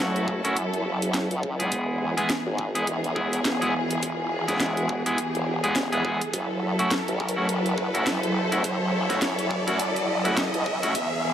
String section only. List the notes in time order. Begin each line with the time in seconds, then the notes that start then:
Already playing: F#3 E4 A4
1.72 E3 B3 G#4
6.34 F#3 E4 A4
10.95 E3 B3 G#4